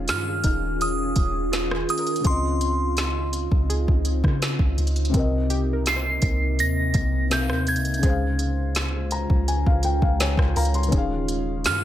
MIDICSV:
0, 0, Header, 1, 7, 480
1, 0, Start_track
1, 0, Tempo, 722892
1, 1493, Time_signature, 4, 2, 24, 8
1, 7862, End_track
2, 0, Start_track
2, 0, Title_t, "Synth bell"
2, 0, Program_c, 0, 98
2, 65, Note_on_c, 0, 89, 105
2, 543, Note_on_c, 0, 87, 96
2, 553, Note_off_c, 0, 89, 0
2, 991, Note_off_c, 0, 87, 0
2, 1261, Note_on_c, 0, 87, 100
2, 1481, Note_off_c, 0, 87, 0
2, 1505, Note_on_c, 0, 84, 98
2, 2192, Note_off_c, 0, 84, 0
2, 3904, Note_on_c, 0, 96, 104
2, 4352, Note_off_c, 0, 96, 0
2, 4383, Note_on_c, 0, 94, 103
2, 4863, Note_on_c, 0, 91, 89
2, 4872, Note_off_c, 0, 94, 0
2, 5103, Note_on_c, 0, 92, 81
2, 5105, Note_off_c, 0, 91, 0
2, 6511, Note_off_c, 0, 92, 0
2, 7745, Note_on_c, 0, 89, 107
2, 7862, Note_off_c, 0, 89, 0
2, 7862, End_track
3, 0, Start_track
3, 0, Title_t, "Felt piano"
3, 0, Program_c, 1, 0
3, 0, Control_c, 1, 64, 127
3, 0, Note_on_c, 1, 51, 82
3, 0, Note_on_c, 1, 61, 77
3, 0, Note_on_c, 1, 68, 74
3, 0, Note_on_c, 1, 77, 90
3, 1452, Note_off_c, 1, 51, 0
3, 1462, Note_off_c, 1, 61, 0
3, 1462, Note_on_c, 1, 49, 67
3, 1473, Note_off_c, 1, 68, 0
3, 1484, Note_off_c, 1, 77, 0
3, 1484, Note_on_c, 1, 60, 64
3, 1500, Control_c, 1, 64, 0
3, 1504, Note_on_c, 1, 65, 63
3, 1526, Note_on_c, 1, 75, 76
3, 1599, Control_c, 1, 64, 127
3, 3370, Note_off_c, 1, 49, 0
3, 3382, Note_off_c, 1, 60, 0
3, 3383, Note_on_c, 1, 48, 83
3, 3392, Note_off_c, 1, 65, 0
3, 3403, Note_off_c, 1, 75, 0
3, 3404, Note_on_c, 1, 60, 78
3, 3421, Control_c, 1, 64, 0
3, 3425, Note_on_c, 1, 70, 75
3, 3446, Note_on_c, 1, 75, 86
3, 3553, Control_c, 1, 64, 127
3, 4811, Note_off_c, 1, 48, 0
3, 4822, Note_off_c, 1, 60, 0
3, 4832, Note_off_c, 1, 70, 0
3, 4839, Note_on_c, 1, 48, 50
3, 4843, Note_off_c, 1, 75, 0
3, 4850, Note_on_c, 1, 60, 43
3, 4860, Note_on_c, 1, 70, 43
3, 4871, Note_on_c, 1, 76, 40
3, 4905, Note_off_c, 1, 76, 0
3, 4914, Note_on_c, 1, 77, 53
3, 5304, Note_on_c, 1, 49, 70
3, 5325, Note_on_c, 1, 56, 60
3, 5326, Note_off_c, 1, 48, 0
3, 5331, Note_off_c, 1, 60, 0
3, 5336, Note_off_c, 1, 70, 0
3, 5342, Control_c, 1, 64, 0
3, 5347, Note_on_c, 1, 72, 67
3, 5357, Note_off_c, 1, 77, 0
3, 5367, Note_on_c, 1, 77, 76
3, 5469, Control_c, 1, 64, 127
3, 6056, Note_on_c, 1, 82, 69
3, 6278, Note_off_c, 1, 82, 0
3, 6295, Note_on_c, 1, 80, 72
3, 6405, Note_off_c, 1, 80, 0
3, 6406, Note_off_c, 1, 77, 0
3, 6416, Note_on_c, 1, 77, 71
3, 6526, Note_off_c, 1, 77, 0
3, 6536, Note_on_c, 1, 79, 72
3, 6646, Note_off_c, 1, 79, 0
3, 6656, Note_on_c, 1, 77, 74
3, 6766, Note_off_c, 1, 77, 0
3, 6778, Note_on_c, 1, 73, 72
3, 6778, Note_on_c, 1, 80, 63
3, 6972, Note_off_c, 1, 49, 0
3, 6982, Note_off_c, 1, 56, 0
3, 6993, Note_off_c, 1, 72, 0
3, 6999, Note_off_c, 1, 73, 0
3, 7003, Note_off_c, 1, 80, 0
3, 7016, Note_on_c, 1, 77, 72
3, 7017, Note_on_c, 1, 82, 72
3, 7129, Note_off_c, 1, 82, 0
3, 7138, Note_on_c, 1, 84, 71
3, 7225, Note_on_c, 1, 51, 82
3, 7238, Note_off_c, 1, 77, 0
3, 7246, Note_on_c, 1, 61, 74
3, 7260, Control_c, 1, 64, 0
3, 7268, Note_on_c, 1, 68, 78
3, 7288, Note_on_c, 1, 77, 94
3, 7357, Control_c, 1, 64, 127
3, 7363, Note_off_c, 1, 84, 0
3, 7862, Note_off_c, 1, 51, 0
3, 7862, Note_off_c, 1, 61, 0
3, 7862, Note_off_c, 1, 68, 0
3, 7862, Note_off_c, 1, 77, 0
3, 7862, End_track
4, 0, Start_track
4, 0, Title_t, "Synth pluck"
4, 0, Program_c, 2, 84
4, 294, Note_on_c, 2, 63, 68
4, 1010, Note_on_c, 2, 65, 68
4, 1169, Note_on_c, 2, 68, 53
4, 1320, Note_on_c, 2, 70, 54
4, 1540, Note_off_c, 2, 63, 0
4, 1705, Note_off_c, 2, 65, 0
4, 1844, Note_off_c, 2, 68, 0
4, 1980, Note_off_c, 2, 70, 0
4, 2454, Note_on_c, 2, 68, 65
4, 3627, Note_off_c, 2, 68, 0
4, 3653, Note_on_c, 2, 67, 76
4, 3806, Note_on_c, 2, 70, 53
4, 3960, Note_on_c, 2, 72, 54
4, 4900, Note_off_c, 2, 67, 0
4, 5036, Note_off_c, 2, 70, 0
4, 5173, Note_off_c, 2, 72, 0
4, 5333, Note_on_c, 2, 68, 80
4, 6580, Note_off_c, 2, 68, 0
4, 7014, Note_on_c, 2, 70, 72
4, 7467, Note_off_c, 2, 70, 0
4, 7862, End_track
5, 0, Start_track
5, 0, Title_t, "Ambient pad"
5, 0, Program_c, 3, 92
5, 0, Note_on_c, 3, 51, 87
5, 0, Note_on_c, 3, 61, 81
5, 0, Note_on_c, 3, 65, 94
5, 0, Note_on_c, 3, 68, 94
5, 1473, Note_off_c, 3, 51, 0
5, 1473, Note_off_c, 3, 61, 0
5, 1473, Note_off_c, 3, 68, 0
5, 1494, Note_on_c, 3, 60, 80
5, 1494, Note_on_c, 3, 63, 80
5, 1495, Note_on_c, 3, 49, 85
5, 3386, Note_off_c, 3, 65, 0
5, 3394, Note_off_c, 3, 49, 0
5, 3394, Note_off_c, 3, 60, 0
5, 3414, Note_on_c, 3, 48, 87
5, 3414, Note_on_c, 3, 58, 80
5, 5307, Note_off_c, 3, 63, 0
5, 5314, Note_off_c, 3, 48, 0
5, 5314, Note_off_c, 3, 58, 0
5, 5333, Note_on_c, 3, 56, 76
5, 5333, Note_on_c, 3, 65, 96
5, 5334, Note_on_c, 3, 49, 82
5, 5334, Note_on_c, 3, 61, 78
5, 7233, Note_off_c, 3, 65, 0
5, 7234, Note_off_c, 3, 49, 0
5, 7234, Note_off_c, 3, 56, 0
5, 7234, Note_off_c, 3, 61, 0
5, 7253, Note_on_c, 3, 68, 95
5, 7254, Note_on_c, 3, 51, 84
5, 7254, Note_on_c, 3, 61, 76
5, 7254, Note_on_c, 3, 65, 78
5, 7862, Note_off_c, 3, 51, 0
5, 7862, Note_off_c, 3, 61, 0
5, 7862, Note_off_c, 3, 65, 0
5, 7862, Note_off_c, 3, 68, 0
5, 7862, End_track
6, 0, Start_track
6, 0, Title_t, "808-style bass"
6, 0, Program_c, 4, 38
6, 55, Note_on_c, 4, 43, 99
6, 282, Note_off_c, 4, 43, 0
6, 293, Note_on_c, 4, 27, 101
6, 754, Note_off_c, 4, 27, 0
6, 771, Note_on_c, 4, 27, 99
6, 1233, Note_off_c, 4, 27, 0
6, 1493, Note_on_c, 4, 37, 107
6, 2306, Note_off_c, 4, 37, 0
6, 2334, Note_on_c, 4, 37, 95
6, 2564, Note_off_c, 4, 37, 0
6, 2578, Note_on_c, 4, 37, 105
6, 2806, Note_off_c, 4, 37, 0
6, 2814, Note_on_c, 4, 49, 103
6, 3044, Note_off_c, 4, 49, 0
6, 3050, Note_on_c, 4, 37, 95
6, 3166, Note_off_c, 4, 37, 0
6, 3173, Note_on_c, 4, 37, 104
6, 3403, Note_off_c, 4, 37, 0
6, 3414, Note_on_c, 4, 36, 97
6, 4107, Note_off_c, 4, 36, 0
6, 4133, Note_on_c, 4, 36, 105
6, 4374, Note_on_c, 4, 39, 102
6, 4384, Note_off_c, 4, 36, 0
6, 4601, Note_off_c, 4, 39, 0
6, 4611, Note_on_c, 4, 36, 104
6, 4975, Note_on_c, 4, 39, 97
6, 4985, Note_off_c, 4, 36, 0
6, 5154, Note_on_c, 4, 36, 97
6, 5164, Note_off_c, 4, 39, 0
6, 5324, Note_off_c, 4, 36, 0
6, 5333, Note_on_c, 4, 37, 101
6, 6146, Note_off_c, 4, 37, 0
6, 6174, Note_on_c, 4, 37, 93
6, 6404, Note_off_c, 4, 37, 0
6, 6418, Note_on_c, 4, 37, 93
6, 6646, Note_off_c, 4, 37, 0
6, 6654, Note_on_c, 4, 37, 97
6, 6884, Note_off_c, 4, 37, 0
6, 6889, Note_on_c, 4, 37, 94
6, 7006, Note_off_c, 4, 37, 0
6, 7014, Note_on_c, 4, 37, 106
6, 7244, Note_off_c, 4, 37, 0
6, 7253, Note_on_c, 4, 27, 101
6, 7735, Note_on_c, 4, 43, 98
6, 7744, Note_off_c, 4, 27, 0
6, 7862, Note_off_c, 4, 43, 0
6, 7862, End_track
7, 0, Start_track
7, 0, Title_t, "Drums"
7, 51, Note_on_c, 9, 42, 69
7, 59, Note_on_c, 9, 38, 100
7, 117, Note_off_c, 9, 42, 0
7, 126, Note_off_c, 9, 38, 0
7, 290, Note_on_c, 9, 42, 76
7, 292, Note_on_c, 9, 36, 88
7, 356, Note_off_c, 9, 42, 0
7, 359, Note_off_c, 9, 36, 0
7, 537, Note_on_c, 9, 42, 69
7, 604, Note_off_c, 9, 42, 0
7, 768, Note_on_c, 9, 42, 69
7, 770, Note_on_c, 9, 36, 87
7, 834, Note_off_c, 9, 42, 0
7, 837, Note_off_c, 9, 36, 0
7, 1015, Note_on_c, 9, 42, 67
7, 1018, Note_on_c, 9, 38, 110
7, 1081, Note_off_c, 9, 42, 0
7, 1084, Note_off_c, 9, 38, 0
7, 1138, Note_on_c, 9, 37, 105
7, 1205, Note_off_c, 9, 37, 0
7, 1254, Note_on_c, 9, 42, 53
7, 1312, Note_off_c, 9, 42, 0
7, 1312, Note_on_c, 9, 42, 51
7, 1372, Note_off_c, 9, 42, 0
7, 1372, Note_on_c, 9, 42, 49
7, 1433, Note_off_c, 9, 42, 0
7, 1433, Note_on_c, 9, 42, 49
7, 1490, Note_off_c, 9, 42, 0
7, 1490, Note_on_c, 9, 42, 70
7, 1493, Note_on_c, 9, 36, 111
7, 1557, Note_off_c, 9, 42, 0
7, 1559, Note_off_c, 9, 36, 0
7, 1733, Note_on_c, 9, 42, 73
7, 1799, Note_off_c, 9, 42, 0
7, 1971, Note_on_c, 9, 42, 69
7, 1979, Note_on_c, 9, 38, 97
7, 2037, Note_off_c, 9, 42, 0
7, 2046, Note_off_c, 9, 38, 0
7, 2210, Note_on_c, 9, 42, 73
7, 2277, Note_off_c, 9, 42, 0
7, 2334, Note_on_c, 9, 36, 88
7, 2400, Note_off_c, 9, 36, 0
7, 2457, Note_on_c, 9, 42, 71
7, 2523, Note_off_c, 9, 42, 0
7, 2577, Note_on_c, 9, 36, 87
7, 2644, Note_off_c, 9, 36, 0
7, 2688, Note_on_c, 9, 42, 66
7, 2755, Note_off_c, 9, 42, 0
7, 2814, Note_on_c, 9, 36, 89
7, 2818, Note_on_c, 9, 37, 65
7, 2880, Note_off_c, 9, 36, 0
7, 2885, Note_off_c, 9, 37, 0
7, 2935, Note_on_c, 9, 42, 63
7, 2938, Note_on_c, 9, 38, 115
7, 3001, Note_off_c, 9, 42, 0
7, 3004, Note_off_c, 9, 38, 0
7, 3049, Note_on_c, 9, 36, 92
7, 3115, Note_off_c, 9, 36, 0
7, 3174, Note_on_c, 9, 42, 49
7, 3234, Note_off_c, 9, 42, 0
7, 3234, Note_on_c, 9, 42, 48
7, 3293, Note_off_c, 9, 42, 0
7, 3293, Note_on_c, 9, 42, 53
7, 3353, Note_off_c, 9, 42, 0
7, 3353, Note_on_c, 9, 42, 53
7, 3412, Note_off_c, 9, 42, 0
7, 3412, Note_on_c, 9, 42, 68
7, 3413, Note_on_c, 9, 36, 118
7, 3479, Note_off_c, 9, 36, 0
7, 3479, Note_off_c, 9, 42, 0
7, 3653, Note_on_c, 9, 42, 74
7, 3719, Note_off_c, 9, 42, 0
7, 3890, Note_on_c, 9, 42, 71
7, 3898, Note_on_c, 9, 38, 98
7, 3956, Note_off_c, 9, 42, 0
7, 3965, Note_off_c, 9, 38, 0
7, 4128, Note_on_c, 9, 42, 78
7, 4132, Note_on_c, 9, 36, 89
7, 4194, Note_off_c, 9, 42, 0
7, 4198, Note_off_c, 9, 36, 0
7, 4375, Note_on_c, 9, 42, 69
7, 4442, Note_off_c, 9, 42, 0
7, 4607, Note_on_c, 9, 42, 67
7, 4610, Note_on_c, 9, 36, 86
7, 4673, Note_off_c, 9, 42, 0
7, 4677, Note_off_c, 9, 36, 0
7, 4854, Note_on_c, 9, 42, 68
7, 4857, Note_on_c, 9, 38, 116
7, 4920, Note_off_c, 9, 42, 0
7, 4923, Note_off_c, 9, 38, 0
7, 4977, Note_on_c, 9, 37, 105
7, 5043, Note_off_c, 9, 37, 0
7, 5091, Note_on_c, 9, 42, 51
7, 5152, Note_off_c, 9, 42, 0
7, 5152, Note_on_c, 9, 42, 52
7, 5212, Note_off_c, 9, 42, 0
7, 5212, Note_on_c, 9, 42, 50
7, 5272, Note_off_c, 9, 42, 0
7, 5272, Note_on_c, 9, 42, 49
7, 5331, Note_off_c, 9, 42, 0
7, 5331, Note_on_c, 9, 42, 69
7, 5333, Note_on_c, 9, 36, 116
7, 5398, Note_off_c, 9, 42, 0
7, 5399, Note_off_c, 9, 36, 0
7, 5571, Note_on_c, 9, 42, 70
7, 5637, Note_off_c, 9, 42, 0
7, 5809, Note_on_c, 9, 42, 71
7, 5818, Note_on_c, 9, 38, 102
7, 5876, Note_off_c, 9, 42, 0
7, 5884, Note_off_c, 9, 38, 0
7, 6048, Note_on_c, 9, 42, 73
7, 6114, Note_off_c, 9, 42, 0
7, 6174, Note_on_c, 9, 36, 93
7, 6240, Note_off_c, 9, 36, 0
7, 6295, Note_on_c, 9, 42, 67
7, 6361, Note_off_c, 9, 42, 0
7, 6417, Note_on_c, 9, 36, 88
7, 6484, Note_off_c, 9, 36, 0
7, 6526, Note_on_c, 9, 42, 66
7, 6593, Note_off_c, 9, 42, 0
7, 6653, Note_on_c, 9, 36, 92
7, 6720, Note_off_c, 9, 36, 0
7, 6773, Note_on_c, 9, 42, 65
7, 6776, Note_on_c, 9, 38, 113
7, 6839, Note_off_c, 9, 42, 0
7, 6842, Note_off_c, 9, 38, 0
7, 6888, Note_on_c, 9, 36, 92
7, 6898, Note_on_c, 9, 37, 99
7, 6955, Note_off_c, 9, 36, 0
7, 6964, Note_off_c, 9, 37, 0
7, 7012, Note_on_c, 9, 42, 51
7, 7015, Note_on_c, 9, 46, 66
7, 7072, Note_off_c, 9, 42, 0
7, 7072, Note_on_c, 9, 42, 51
7, 7081, Note_off_c, 9, 46, 0
7, 7133, Note_off_c, 9, 42, 0
7, 7133, Note_on_c, 9, 42, 53
7, 7193, Note_off_c, 9, 42, 0
7, 7193, Note_on_c, 9, 42, 54
7, 7252, Note_off_c, 9, 42, 0
7, 7252, Note_on_c, 9, 42, 71
7, 7253, Note_on_c, 9, 36, 122
7, 7318, Note_off_c, 9, 42, 0
7, 7320, Note_off_c, 9, 36, 0
7, 7493, Note_on_c, 9, 42, 70
7, 7559, Note_off_c, 9, 42, 0
7, 7732, Note_on_c, 9, 42, 71
7, 7740, Note_on_c, 9, 38, 98
7, 7798, Note_off_c, 9, 42, 0
7, 7806, Note_off_c, 9, 38, 0
7, 7862, End_track
0, 0, End_of_file